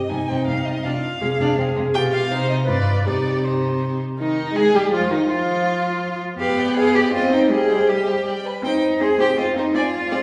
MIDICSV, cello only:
0, 0, Header, 1, 2, 480
1, 0, Start_track
1, 0, Key_signature, -3, "minor"
1, 0, Tempo, 371058
1, 1084, Time_signature, 3, 2, 24, 8
1, 13228, End_track
2, 0, Start_track
2, 0, Title_t, "Cello"
2, 0, Program_c, 0, 42
2, 142, Note_on_c, 0, 48, 35
2, 235, Note_off_c, 0, 48, 0
2, 378, Note_on_c, 0, 48, 44
2, 471, Note_off_c, 0, 48, 0
2, 614, Note_on_c, 0, 48, 35
2, 708, Note_off_c, 0, 48, 0
2, 857, Note_on_c, 0, 48, 31
2, 950, Note_off_c, 0, 48, 0
2, 1088, Note_on_c, 0, 48, 53
2, 1183, Note_off_c, 0, 48, 0
2, 1574, Note_on_c, 0, 48, 42
2, 1666, Note_off_c, 0, 48, 0
2, 1801, Note_on_c, 0, 48, 53
2, 1895, Note_off_c, 0, 48, 0
2, 2044, Note_on_c, 0, 48, 44
2, 2137, Note_off_c, 0, 48, 0
2, 2283, Note_on_c, 0, 48, 42
2, 2376, Note_off_c, 0, 48, 0
2, 2515, Note_on_c, 0, 47, 49
2, 2955, Note_off_c, 0, 47, 0
2, 2992, Note_on_c, 0, 48, 57
2, 3472, Note_on_c, 0, 43, 51
2, 3492, Note_off_c, 0, 48, 0
2, 3964, Note_on_c, 0, 48, 43
2, 3984, Note_off_c, 0, 43, 0
2, 5186, Note_off_c, 0, 48, 0
2, 5422, Note_on_c, 0, 63, 67
2, 5905, Note_on_c, 0, 68, 78
2, 5924, Note_off_c, 0, 63, 0
2, 6148, Note_on_c, 0, 67, 67
2, 6167, Note_off_c, 0, 68, 0
2, 6368, Note_off_c, 0, 67, 0
2, 6376, Note_on_c, 0, 65, 73
2, 6619, Note_on_c, 0, 63, 66
2, 6639, Note_off_c, 0, 65, 0
2, 6848, Note_off_c, 0, 63, 0
2, 6856, Note_on_c, 0, 65, 64
2, 8014, Note_off_c, 0, 65, 0
2, 8270, Note_on_c, 0, 67, 87
2, 8713, Note_off_c, 0, 67, 0
2, 8754, Note_on_c, 0, 68, 94
2, 8991, Note_on_c, 0, 67, 86
2, 9010, Note_off_c, 0, 68, 0
2, 9222, Note_off_c, 0, 67, 0
2, 9230, Note_on_c, 0, 65, 94
2, 9466, Note_off_c, 0, 65, 0
2, 9479, Note_on_c, 0, 63, 73
2, 9718, Note_on_c, 0, 68, 83
2, 9737, Note_off_c, 0, 63, 0
2, 10212, Note_on_c, 0, 67, 69
2, 10232, Note_off_c, 0, 68, 0
2, 10689, Note_off_c, 0, 67, 0
2, 11182, Note_on_c, 0, 63, 78
2, 11652, Note_on_c, 0, 68, 90
2, 11672, Note_off_c, 0, 63, 0
2, 11905, Note_on_c, 0, 67, 70
2, 11925, Note_off_c, 0, 68, 0
2, 12137, Note_off_c, 0, 67, 0
2, 12146, Note_on_c, 0, 65, 77
2, 12373, Note_off_c, 0, 65, 0
2, 12380, Note_on_c, 0, 63, 68
2, 12609, Note_on_c, 0, 65, 82
2, 12628, Note_off_c, 0, 63, 0
2, 13228, Note_off_c, 0, 65, 0
2, 13228, End_track
0, 0, End_of_file